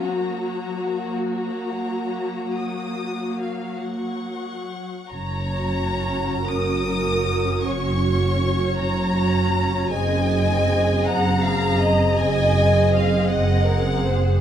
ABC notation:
X:1
M:12/8
L:1/16
Q:3/8=52
K:F#
V:1 name="Violin section"
a6 a6 d'4 e2 [fc']6 | a6 d'6 c'6 a6 | g6 a6 g4 e2 f6 |]
V:2 name="Violin section"
F16- F2 z6 | c6 A6 c12 | d6 f2 e2 d8 d2 A2 ^B2 |]
V:3 name="Viola section"
F,16- F,6- F, z | z2 [CF]6 [CF]6 [CF]6 [CF]4 | [^B,G]2 [B,G]6 [B,G]6 [B,G]6 [B,G]4 |]
V:4 name="Cello section" clef=bass
A,16- A,4- A, z3 | F,,6 F,,6 F,,6 F,,6 | F,,6 F,,6 F,,6 F,,6 |]
V:5 name="Double bass section" clef=bass
z24 | F,,,6 F,,,6 F,,,6 F,,,6 | F,,,6 F,,,6 F,,,6 F,,,6 |]